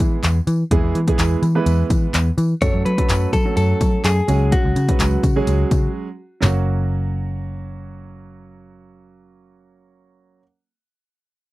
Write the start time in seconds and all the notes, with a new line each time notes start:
Already playing: E3 G#3 B3 E4 G#4
0.00 E3, kick, closed hi-hat, tambourine
0.23 E2, clap, closed hi-hat, tambourine
0.47 E3, closed hi-hat, tambourine
0.71 E2 E3 G#3 B3 E4 G#4, kick, closed hi-hat
0.84 E2
0.95 E3, closed hi-hat
1.07 E3 G#3 B3 E4 G#4, kick, closed hi-hat
1.19 E2, clap, closed hi-hat, tambourine
1.42 E3, closed hi-hat, tambourine
1.55 E3 G#3 B3 E4 B4
1.66 E2, closed hi-hat, tambourine
1.90 E3, kick, closed hi-hat, tambourine
2.14 E2, clap, closed hi-hat, tambourine
2.38 E3, closed hi-hat, tambourine
2.61 F#2 F#3 A3 C#4 F#4 A4 C#5, kick, closed hi-hat, tambourine
2.74 F#2
2.85 F#3 B4, closed hi-hat
2.98 F#3 A3 C#4 F#4 A4, kick, closed hi-hat
3.09 F#2, clap, closed hi-hat, tambourine
3.33 F#3 A4, kick, closed hi-hat, tambourine
3.45 F#3 A3 C#4 F#4 A4
3.57 F#2 A4, closed hi-hat, tambourine
3.81 F#3, kick, closed hi-hat, tambourine
4.04 F#2 G#4, clap, closed hi-hat, tambourine
4.28 C#2 F#3 G#3 C#4 F#4 G#4, closed hi-hat, tambourine
4.52 F#4, kick, closed hi-hat, tambourine
4.65 C#2
4.76 C#3, closed hi-hat, tambourine
4.88 F#3 G#3 C#4 F#4 B4, kick, closed hi-hat
5.00 C#2, clap, closed hi-hat, tambourine
5.23 C#3, kick, closed hi-hat, tambourine
5.36 F#3 G#3 C#4 F#4 G#4
5.47 C#2, closed hi-hat, tambourine
5.71 C#3, kick, closed hi-hat, tambourine
6.41 F#1 F#3 A#3 C#4 F#4, snare, clap, floor tom, tambourine